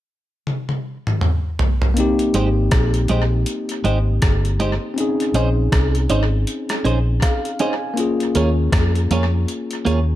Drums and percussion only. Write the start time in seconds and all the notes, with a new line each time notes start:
0.47 high tom
0.69 high tom
1.07 mid tom
1.21 mid tom
1.59 floor tom
1.82 floor tom
1.97 closed hi-hat
2.19 closed hi-hat
2.34 closed hi-hat
2.71 kick, cross-stick, closed hi-hat
2.94 closed hi-hat
3.08 closed hi-hat
3.46 closed hi-hat
3.69 closed hi-hat
3.85 closed hi-hat
4.22 kick, cross-stick, closed hi-hat
4.45 closed hi-hat
4.60 closed hi-hat
4.98 closed hi-hat
5.20 closed hi-hat
5.34 closed hi-hat
5.72 kick, cross-stick, closed hi-hat
5.95 closed hi-hat
6.10 closed hi-hat
6.47 closed hi-hat
6.69 cross-stick, closed hi-hat
6.85 closed hi-hat
7.22 kick, cross-stick, closed hi-hat
7.45 closed hi-hat
7.59 closed hi-hat
7.97 closed hi-hat
8.20 closed hi-hat
8.35 closed hi-hat
8.72 kick, cross-stick, closed hi-hat
8.95 closed hi-hat
9.11 closed hi-hat
9.48 closed hi-hat
9.71 closed hi-hat
9.86 closed hi-hat